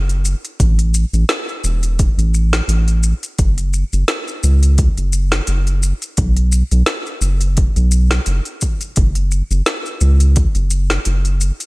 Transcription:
Already playing: analog synth bass F#1
0.09 closed hi-hat, shaker
0.25 shaker
0.45 closed hi-hat, shaker
0.60 analog synth bass A1, kick, closed hi-hat, shaker
0.79 closed hi-hat, shaker
0.94 shaker
1.13 analog synth bass A1, shaker
1.29 snare, closed hi-hat, shaker
1.49 shaker
1.64 analog synth bass E1, shaker
1.83 closed hi-hat, shaker
1.99 kick, closed hi-hat, shaker
2.18 analog synth bass A1, closed hi-hat, shaker
2.34 shaker
2.53 snare, shaker
2.68 analog synth bass A1, closed hi-hat, shaker
2.88 closed hi-hat, shaker
3.03 shaker
3.23 closed hi-hat, shaker
3.39 analog synth bass F#1, kick, closed hi-hat, shaker
3.58 closed hi-hat, shaker
3.73 shaker
3.93 analog synth bass F#1, shaker
4.08 snare, closed hi-hat, shaker
4.28 shaker
4.43 analog synth bass C#2, shaker
4.63 closed hi-hat, shaker
4.78 kick, closed hi-hat, shaker
4.97 analog synth bass F#1, closed hi-hat, shaker
5.13 shaker
5.32 snare, shaker
5.47 analog synth bass F#1, closed hi-hat, shaker
5.67 closed hi-hat, shaker
5.83 shaker
6.02 closed hi-hat, shaker
6.17 analog synth bass B1, kick, closed hi-hat, shaker
6.37 closed hi-hat, shaker
6.52 shaker
6.71 analog synth bass B1, closed hi-hat, shaker
6.86 snare, closed hi-hat, shaker
7.06 shaker
7.21 analog synth bass F#1, shaker
7.41 closed hi-hat, shaker
7.57 kick, closed hi-hat, shaker
7.76 analog synth bass B1, closed hi-hat, shaker
7.91 shaker
8.11 snare, shaker
8.26 analog synth bass F#1, closed hi-hat, shaker
8.45 closed hi-hat, shaker
8.61 kick, shaker
8.81 closed hi-hat, shaker
8.96 analog synth bass F#1, kick, closed hi-hat, shaker
9.15 closed hi-hat, shaker
9.31 shaker
9.51 analog synth bass F#1, shaker
9.66 snare, closed hi-hat, shaker
9.86 shaker
10.01 analog synth bass C#2, shaker
10.20 closed hi-hat, shaker
10.36 kick, closed hi-hat, shaker
10.55 analog synth bass F#1, closed hi-hat, shaker
10.71 shaker
10.90 snare, shaker
11.05 analog synth bass F#1, closed hi-hat, shaker
11.25 closed hi-hat, shaker
11.41 shaker
11.60 closed hi-hat, shaker

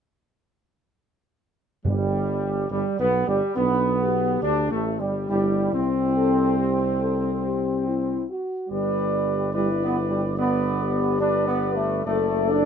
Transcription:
1.85 tuba G1, timpani G2, trumpet section G3, trombone section G3
2.71 tuba G1, trumpet section G3, trombone section G3
2.99 tuba B1, trumpet section B3, trombone section B3
3.28 tuba G1, trumpet section G3, trombone section G3
3.55 tuba B1, trombone section B3, trumpet section B3, french horn section D4
4.00 french horn section G4
4.42 tuba D2, trombone section D4, trumpet section D4
4.71 tuba A1, trumpet section A3, trombone section A3
4.98 tuba G1, trombone section G3, trumpet section G3
5.28 tuba G1, trombone section G3, trumpet section G3, french horn section E4
5.73 tuba C2, trumpet section C4, trombone section C4
6.16 french horn section A4
6.57 french horn section G4
6.99 french horn section A4
7.44 french horn section G4
7.86 french horn section E4
8.29 french horn section F#4
8.69 tuba G1, trombone section G3, french horn section G4, trumpet section B4 D5
9.52 trombone section G3, french horn section E4, trumpet section B4 D5
9.84 trombone section B3
10.10 trombone section G3
10.36 trombone section B3, french horn section D4, trumpet section B4 D5
10.80 french horn section G4
11.19 trombone section D4, trumpet section B4 D5
11.47 trombone section B3
11.75 trombone section A3
12.05 tuba F#1, trombone section A3, trumpet section A4 D5, french horn section A4
12.49 trombone section D4

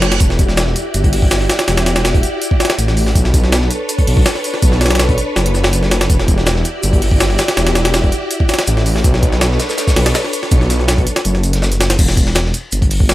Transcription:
Already playing: detuned saw bass F#1, string machine D4 A4 B4 C#5, reverse cymbal
0.02 snare, closed hi-hat
0.12 snare, closed hi-hat
0.20 detuned saw bass E1, string machine E4 F#4 G4 D5, kick, closed hi-hat, shaker
0.30 snare
0.39 kick, closed hi-hat, shaker
0.49 snare
0.57 snare, closed hi-hat, shaker
0.67 snare
0.76 closed hi-hat, shaker
0.94 detuned saw bass G1, closed hi-hat, shaker
1.04 kick, closed hi-hat
1.13 closed hi-hat, open hi-hat
1.22 kick
1.31 snare, closed hi-hat, shaker
1.41 snare
1.49 snare, closed hi-hat, shaker
1.59 snare, closed hi-hat
1.68 detuned saw bass E1, snare, closed hi-hat, shaker
1.77 snare, closed hi-hat
1.86 snare, closed hi-hat, shaker
1.96 snare, closed hi-hat
2.05 snare, closed hi-hat, shaker
2.14 kick, closed hi-hat
2.23 closed hi-hat, shaker
2.42 closed hi-hat, shaker
2.51 kick
2.60 snare, closed hi-hat, shaker
2.65 snare, closed hi-hat
2.70 snare, closed hi-hat
2.78 detuned saw bass A1, closed hi-hat, shaker
2.88 snare
2.97 open hi-hat, shaker
3.06 snare
3.15 detuned saw bass B1, string machine D4 A4 B4 C#5, kick, closed hi-hat, shaker
3.25 snare
3.34 kick, closed hi-hat, shaker
3.44 snare
3.52 snare, closed hi-hat, shaker
3.61 snare
3.71 closed hi-hat, shaker
3.89 closed hi-hat, shaker
3.98 kick, closed hi-hat
4.07 detuned saw bass B1, closed hi-hat, open hi-hat
4.17 kick
4.26 snare, closed hi-hat, shaker
4.35 snare
4.44 closed hi-hat, shaker
4.54 snare
4.62 detuned saw bass B1, kick, closed hi-hat, shaker
4.72 snare
4.81 snare, closed hi-hat, shaker
4.86 snare, closed hi-hat
4.90 snare, closed hi-hat
4.95 snare, closed hi-hat
4.99 snare, closed hi-hat, shaker
5.09 kick, closed hi-hat
5.18 closed hi-hat, shaker
5.36 detuned saw bass F#1, snare, shaker
5.46 closed hi-hat
5.54 snare, shaker
5.64 snare
5.73 closed hi-hat, shaker
5.83 snare
5.91 snare, closed hi-hat, shaker
6.01 snare, closed hi-hat
6.10 detuned saw bass E1, string machine E4 F#4 G4 D5, kick, closed hi-hat, shaker
6.19 snare
6.28 kick, closed hi-hat, shaker
6.38 snare
6.46 snare, closed hi-hat, shaker
6.56 snare
6.65 closed hi-hat, shaker
6.83 detuned saw bass G1, closed hi-hat, shaker
6.93 kick, closed hi-hat
7.02 closed hi-hat, open hi-hat
7.11 kick
7.20 snare, closed hi-hat, shaker
7.30 snare
7.38 snare, closed hi-hat, shaker
7.48 snare, closed hi-hat
7.57 detuned saw bass E1, snare, closed hi-hat, shaker
7.67 snare, closed hi-hat
7.75 snare, closed hi-hat, shaker
7.85 snare, closed hi-hat
7.94 snare, closed hi-hat, shaker
8.03 kick, closed hi-hat
8.12 closed hi-hat, shaker
8.31 closed hi-hat, shaker
8.40 kick
8.49 snare, closed hi-hat, shaker
8.54 snare, closed hi-hat
8.59 snare, closed hi-hat
8.67 detuned saw bass A1, closed hi-hat, shaker
8.77 snare
8.86 open hi-hat, shaker
8.96 snare
9.04 detuned saw bass B1, string machine D4 A4 B4 C#5, kick, closed hi-hat, shaker
9.14 snare
9.23 kick, closed hi-hat, shaker
9.32 snare
9.41 snare, closed hi-hat, shaker
9.51 snare
9.59 snare, closed hi-hat, shaker
9.69 snare, shaker
9.78 snare, closed hi-hat, shaker
9.88 kick, snare, shaker
9.96 detuned saw bass B1, snare, closed hi-hat, open hi-hat
10.06 snare, closed hi-hat
10.14 snare, closed hi-hat, shaker
10.24 snare
10.33 closed hi-hat, shaker
10.43 snare
10.51 detuned saw bass B1, kick, closed hi-hat, shaker
10.61 snare
10.70 snare, closed hi-hat, shaker
10.80 snare
10.88 snare, closed hi-hat, shaker
10.98 kick, closed hi-hat
11.07 closed hi-hat, shaker
11.16 snare, closed hi-hat
11.25 detuned saw bass F#1, closed hi-hat, shaker
11.35 snare
11.43 closed hi-hat, shaker
11.53 snare, closed hi-hat
11.62 snare, shaker
11.72 closed hi-hat, shaker
11.80 snare, closed hi-hat, shaker
11.90 snare, closed hi-hat, shaker
11.99 detuned saw bass E1, kick, closed hi-hat, crash, shaker
12.08 snare
12.17 kick, closed hi-hat, shaker
12.26 snare
12.35 snare, closed hi-hat, shaker
12.45 snare
12.54 closed hi-hat, shaker
12.72 detuned saw bass G1, closed hi-hat, shaker
12.82 kick, closed hi-hat
12.90 closed hi-hat, open hi-hat
13.00 kick
13.09 snare, closed hi-hat, shaker

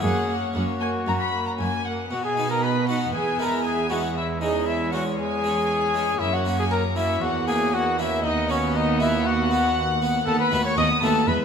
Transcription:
Already playing: harpsichord A#3
0.00 cello section F#2, harpsichord F#2 C#4, viola section A#3, trumpet G#4, violin section C#5 F#5
0.28 viola section A#3, violin section F#5
0.53 harpsichord F#2, cello section F#2, viola section A#3, trumpet F#4, violin section F#5
0.80 viola section A#3, violin section G#5
1.06 harpsichord F#2, cello section F#2, viola section A#3, violin section A#5
1.21 violin section B5
1.32 viola section A#3
1.47 violin section A#5
1.58 harpsichord F#2, cello section F#2, viola section A#3, violin section G#5
1.85 viola section A#3, violin section F#5
2.10 harpsichord B2, cello section B2, viola section B3, trumpet F#4, violin section D#5 F#5
2.24 trumpet G#4, violin section G#5
2.37 harpsichord B3 D#4
2.50 trumpet A#4, violin section A#5
2.63 trumpet B4, violin section B5
2.88 harpsichord B3 D#4, trumpet F#4, violin section F#5
3.13 harpsichord E2, cello section E2, trumpet G#4, violin section E5 G#5
3.39 harpsichord G#3 B3 E4, trumpet A#4, violin section A#5
3.64 trumpet G#4, violin section G#5
3.90 harpsichord G#3 B3 E4, trumpet F#4, violin section F#5
4.15 viola section G#3, trumpet E4, violin section C#5 E5
4.41 harpsichord G#3 C#4, trumpet D#4, violin section D#5
4.66 trumpet E4, violin section E5
4.92 harpsichord G#3 C#4, trumpet F#4, violin section F#5
5.17 trumpet G#4, violin section G#5
5.44 harpsichord G#3 C#4
5.94 harpsichord G#3 C#4
6.19 harpsichord F#2, cello section F#2, viola section A#3, trumpet E4, violin section E5
6.33 trumpet F#4, violin section F#5
6.45 harpsichord A#3 C#4 F#4
6.58 trumpet G#4, violin section G#5
6.71 trumpet A#4, violin section A#5
6.96 harpsichord A#3 C#4 F#4, trumpet E4, violin section E5
7.21 harpsichord E2, cello section E2, trumpet F#4, violin section F#5
7.48 harpsichord A#3 C#4 F#4, trumpet G#4, violin section G#5
7.73 trumpet F#4, violin section F#5
7.99 harpsichord A#3 C#4 F#4, trumpet E4, violin section E5
8.22 harpsichord D#2, cello section D#2, viola section B3, trumpet D#4, violin section D#5 F#5
8.49 harpsichord B3 F#4, trumpet C#4, violin section C#5
8.73 trumpet D#4, violin section D#5
9.00 harpsichord B3 F#4, trumpet E4, violin section E5
9.24 trumpet F#4, violin section F#5
9.51 harpsichord B3 F#4
10.02 harpsichord B3 F#4
10.26 cello section D#2, harpsichord D#2, viola section B3, trumpet A4, violin section F#5 A5
10.39 trumpet B4, violin section B5
10.51 cello section D#2, harpsichord D#2 A3 B3 F#4, viola section B3, violin section F#5
10.65 trumpet C#5, violin section C#6
10.76 cello section D#2, harpsichord D#2, viola section B3, trumpet D#5, violin section F#5 D#6
11.01 cello section D#2, harpsichord D#2 A3 B3 F#4, viola section B3, trumpet A4, violin section F#5 A5
11.27 harpsichord E2, cello section E2, viola section G#3, trumpet B4, violin section E5 B5

